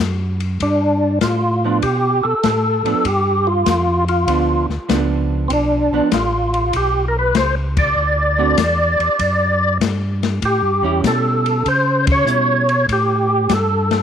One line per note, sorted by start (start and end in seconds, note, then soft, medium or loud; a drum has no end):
0.00 0.59 F#2 medium
0.40 ride soft
0.60 1.20 G2 medium
0.60 1.19 D4 medium
0.60 kick soft
0.60 ride medium
1.21 1.81 A2 medium
1.21 1.79 F4 medium
1.21 kick soft
1.21 snare medium
1.21 hi-hat pedal medium
1.21 ride medium
1.65 1.82 F3 medium
1.65 1.82 B3 soft
1.65 1.82 D4 medium
1.82 2.22 B2 medium
1.82 2.26 G4 medium
1.82 kick soft
1.82 ride medium
2.23 2.34 B2 soft
2.23 3.07 A4 medium
2.43 2.83 A2 medium
2.43 kick soft
2.43 snare medium
2.43 hi-hat pedal soft
2.43 ride medium
2.84 2.94 A2 soft
2.84 3.03 F3 medium
2.84 3.04 B3 medium
2.84 3.04 D4 medium
2.84 ride soft
3.05 3.65 G2 medium
3.05 3.49 G4 loud
3.05 kick soft
3.05 ride medium
3.47 4.05 F4 medium
3.66 4.26 F2 medium
3.66 kick soft
3.66 snare medium
3.66 hi-hat pedal medium
3.66 ride medium
4.08 4.66 F4 medium
4.08 ride soft
4.27 4.67 D2 medium
4.27 4.66 F3 soft
4.27 4.66 B3 medium
4.27 4.66 D4 soft
4.27 kick soft
4.27 ride medium
4.68 4.79 D2 soft
4.68 snare soft
4.88 5.49 C#2 medium
4.88 5.84 F3 medium
4.88 5.84 B3 medium
4.88 5.84 D4 medium
4.88 kick soft
4.88 snare medium
4.88 hi-hat pedal medium
4.88 ride medium
5.48 5.90 B1 medium
5.48 5.52 C4 medium
5.48 kick soft
5.48 ride medium
5.53 6.09 D4 medium
5.91 6.01 B1 soft
5.91 6.11 F3 medium
5.91 6.11 B3 medium
5.91 6.11 D4 medium
6.12 6.72 A1 medium
6.12 6.76 F4 medium
6.12 kick soft
6.12 snare medium
6.12 hi-hat pedal soft
6.12 ride medium
6.54 ride soft
6.73 7.33 B1 medium
6.73 7.05 G4 medium
6.73 kick soft
6.73 ride medium
7.08 7.17 A#4 medium
7.19 7.35 B4 medium
7.34 7.94 C#2 medium
7.34 7.55 C5 medium
7.34 kick soft
7.34 snare medium
7.34 hi-hat pedal soft
7.34 ride medium
7.77 9.78 D5 medium
7.77 kick medium
7.77 ride medium
7.96 8.56 D2 medium
8.38 8.56 D3 medium
8.38 8.56 A3 medium
8.38 8.56 C4 medium
8.38 8.56 F#4 medium
8.57 8.97 E2 medium
8.57 kick soft
8.57 snare medium
8.57 hi-hat pedal medium
8.57 ride medium
8.99 9.09 E2 soft
8.99 ride soft
9.19 9.79 F#2 medium
9.19 kick soft
9.19 ride medium
9.80 10.40 G2 medium
9.80 kick soft
9.80 snare medium
9.80 hi-hat pedal medium
9.80 ride medium
10.23 snare soft
10.23 ride soft
10.42 10.62 A2 medium
10.42 11.01 G4 medium
10.42 kick soft
10.42 ride medium
10.63 10.83 G2 soft
10.82 11.02 E2 medium
10.82 11.61 G3 medium
10.82 11.61 C#4 medium
10.82 11.62 E4 medium
11.03 11.63 B2 medium
11.03 11.69 A4 medium
11.03 kick soft
11.03 snare medium
11.03 hi-hat pedal medium
11.03 ride medium
11.46 ride soft
11.65 12.25 C#3 medium
11.65 12.06 C5 medium
11.65 kick soft
11.65 ride medium
12.07 kick medium
12.07 ride medium
12.12 12.87 C#5 loud
12.26 12.86 B2 medium
12.26 12.64 G3 soft
12.26 12.65 C#4 soft
12.26 12.65 E4 soft
12.26 hi-hat pedal medium
12.69 ride soft
12.88 13.48 A2 medium
12.88 kick soft
12.88 ride medium
12.93 13.54 G4 loud
13.49 14.02 G2 medium
13.49 14.02 A4 medium
13.49 kick soft
13.49 snare medium
13.49 hi-hat pedal medium
13.49 ride medium
13.91 snare medium
13.91 ride soft